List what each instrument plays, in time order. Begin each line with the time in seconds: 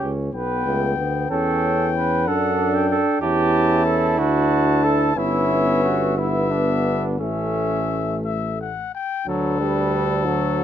Already playing: trombone C#4, flugelhorn G4
0.02 bass trombone C#2
0.33 bass trombone B1, french horn B3, trombone B3, flugelhorn B4, trumpet G5
0.65 bass trombone C#2, trombone A3
0.97 bass trombone D2, trombone B3
1.30 bass trombone E2, trombone C#4, french horn C#4, flugelhorn A4, trumpet G5
1.96 flugelhorn B4
2.26 bass trombone F#2, trombone D4, french horn D4, flugelhorn A4, trumpet F#5
2.75 trumpet G5
2.90 flugelhorn A4
3.21 bass trombone E2, french horn C#4, trombone E4, flugelhorn G4, trumpet A5
3.85 flugelhorn A4
4.18 bass trombone D2, french horn D4, flugelhorn F#4, trumpet A5
4.84 flugelhorn A4
5.16 bass trombone G1, french horn B3, trombone C#4, flugelhorn E4, trumpet E5
5.84 flugelhorn F#4
6.17 french horn B3, trombone B3, flugelhorn E4, trumpet E5
6.51 flugelhorn D4
7.19 bass trombone A1, french horn A3, trombone A3, flugelhorn C#4, trumpet E5
8.25 trumpet E5
8.61 trumpet F#5
8.95 trumpet G5
9.27 bass trombone D2, trombone F#3, french horn D4, trumpet A4, flugelhorn B4
9.61 trombone G3
10.25 trombone F#3, french horn F#4, flugelhorn A4